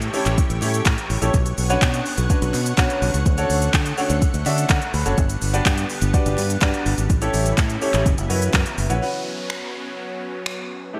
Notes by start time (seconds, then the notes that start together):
Already playing: E3 G3 A3 G4 C#5
0.02 closed hi-hat, shaker
0.14 C#4 E4 G4 A4 C#5, open hi-hat, shaker
0.26 A1, clap, closed hi-hat, shaker
0.38 kick, closed hi-hat, shaker
0.50 A1, closed hi-hat, shaker
0.61 A2 C#4 E4 G4 A4 C#5, clap, open hi-hat, shaker
0.74 closed hi-hat, shaker
0.86 A2, kick, clap, closed hi-hat, shaker
0.98 closed hi-hat, shaker
1.10 A1, open hi-hat, shaker
1.22 A#1 C#4 E4 G4 A4 C#5, closed hi-hat, shaker
1.34 B1 D3 B3 F#5, kick, closed hi-hat, shaker
1.46 closed hi-hat, shaker
1.58 B1, open hi-hat, shaker
1.70 C#4 D4 F#4 B4 C#5, closed hi-hat, shaker
1.82 B2, kick, clap, closed hi-hat, shaker
1.94 closed hi-hat, shaker
2.06 open hi-hat, shaker
2.18 B1, closed hi-hat, shaker
2.30 C#4 D4 F#4 B4 C#5, kick, closed hi-hat, shaker
2.42 B1, closed hi-hat, shaker
2.54 B2, clap, open hi-hat, shaker
2.66 closed hi-hat, shaker
2.78 B2 C#4 D4 F#4 B4 C#5, kick, clap, closed hi-hat, shaker
2.90 closed hi-hat, shaker
3.02 B1, open hi-hat, shaker
3.14 C#2, closed hi-hat, shaker
3.26 D2 A3, kick, closed hi-hat, shaker
3.38 C#4 D4 F#4 A4 C#5, closed hi-hat, shaker
3.50 D2, open hi-hat, shaker
3.62 closed hi-hat, shaker
3.74 D3, kick, clap, closed hi-hat, shaker
3.86 closed hi-hat, shaker
3.98 C#4 D4 F#4 A4 C#5, open hi-hat, shaker
4.10 D2, closed hi-hat, shaker
4.22 kick, closed hi-hat, shaker
4.34 D2, closed hi-hat, shaker
4.46 D3 C#4 D4 F#4 A4 D5 E5, clap, open hi-hat, shaker
4.58 closed hi-hat, shaker
4.70 D3 F#5, kick, clap, closed hi-hat, shaker
4.82 closed hi-hat, shaker
4.94 D2 B5, open hi-hat, shaker
5.05 F#1 C#4 D4 F#4 A4 C#5, closed hi-hat, shaker
5.18 G1 G3 B3, kick, closed hi-hat, shaker
5.30 closed hi-hat, shaker
5.42 G1, open hi-hat, shaker
5.53 D4 F#4 G4 B4 D5, closed hi-hat, shaker
5.66 G2, kick, clap, closed hi-hat, shaker
5.78 closed hi-hat, shaker
5.90 open hi-hat, shaker
6.02 G1, closed hi-hat, shaker
6.13 D4 F#4 G4 B4 D5, kick, closed hi-hat, shaker
6.26 G1, closed hi-hat, shaker
6.38 G2, clap, open hi-hat, shaker
6.50 closed hi-hat, shaker
6.61 G2 D4 F#4 G4 B4 D5, kick, clap, closed hi-hat, shaker
6.74 closed hi-hat, shaker
6.86 G1, open hi-hat, shaker
6.98 G#1, closed hi-hat, shaker
7.10 A1 C#3 E3 A3 E4, kick, closed hi-hat, shaker
7.22 C#4 E4 G4 A4 C#5, closed hi-hat, shaker
7.34 A1, open hi-hat, shaker
7.46 closed hi-hat, shaker
7.58 A2, kick, clap, closed hi-hat, shaker
7.70 closed hi-hat, shaker
7.82 C#4 E4 G4 A4 C#5, open hi-hat, shaker
7.94 A1, clap, closed hi-hat, shaker
8.06 F#1 F#3 B3, kick, closed hi-hat, shaker
8.18 F#1, closed hi-hat, shaker
8.29 F#2 C#4 E4 F#4 B4 C#5, open hi-hat, shaker
8.42 closed hi-hat, shaker
8.54 F#2, kick, clap, closed hi-hat, shaker
8.66 closed hi-hat, shaker
8.78 F#1, open hi-hat, shaker
8.89 A#1 C#4 E4 F#4 B4 C#5, closed hi-hat, shaker
9.01 F#3 B3 C#4 F#4 B4, downlifter
9.50 finger snap
10.46 finger snap
10.93 G3 A3 D4 E4 G4 A4